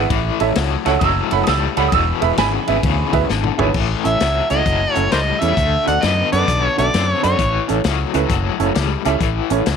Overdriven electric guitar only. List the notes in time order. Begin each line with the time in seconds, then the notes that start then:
0.10 A2 E3
0.55 A2 F#3
0.85 A2 F#3
1.01 A2 F#3
1.47 A2 G3
1.77 A2 G3
1.93 E2 B2
2.38 E2 C#3
2.68 E2 C#3
2.84 E2 C#3
3.29 E2 D3
3.59 E2 D3
3.75 A2 E3
4.21 A2 F#3
4.50 A2 F#3
4.66 A2 F#3
5.11 A2 G3
5.41 A2 G3
5.56 D3 A3
6.02 D3 B3
6.32 D3 B3
6.48 D3 B3
6.93 D3 C4
7.23 D3 C4
7.39 A2 E3
7.84 A2 F#3
8.14 A2 F#3
8.30 A2 F#3
8.75 A2 G3
9.05 A2 G3
9.21 A2 E3
9.66 A2 F#3